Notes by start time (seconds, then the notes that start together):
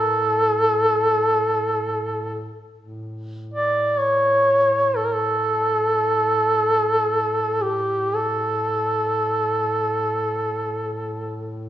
Already playing: A2 A4
2.78 A2
3.54 D5
3.99 C#5
4.96 A4
5.05 A#4
5.14 A4
7.62 G4
8.15 A4